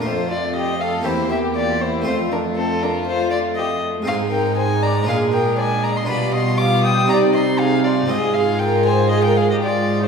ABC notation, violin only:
X:1
M:4/4
L:1/16
Q:1/4=119
K:Fmix
V:1 name="Violin"
c2 d2 e2 f2 c2 =e2 d2 c2 | c2 B2 A2 B2 c2 d2 e2 z2 | [K:Fdor] f2 g2 a2 b2 f2 g2 a2 b c' | =b2 c'2 d'2 e'2 _b2 c'2 f2 d2 |
e2 f2 g2 a2 e g f e d3 c |]